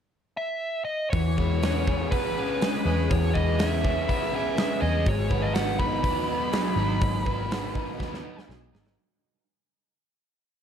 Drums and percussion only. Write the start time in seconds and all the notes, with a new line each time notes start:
1.13 kick, open hi-hat
1.38 kick
1.63 snare, open hi-hat
1.87 kick
2.12 kick, open hi-hat
2.62 snare, open hi-hat
3.11 kick, open hi-hat
3.35 kick
3.59 snare, open hi-hat
3.85 kick
4.09 kick, open hi-hat
4.58 snare, open hi-hat
5.06 kick, open hi-hat
5.31 kick
5.55 snare, open hi-hat
5.80 kick
6.04 kick, open hi-hat
6.53 snare, open hi-hat
7.01 kick, open hi-hat
7.26 kick
7.51 snare, open hi-hat
7.75 kick
8.00 kick, snare
8.14 snare
8.39 snare
8.50 snare
8.75 snare
8.87 snare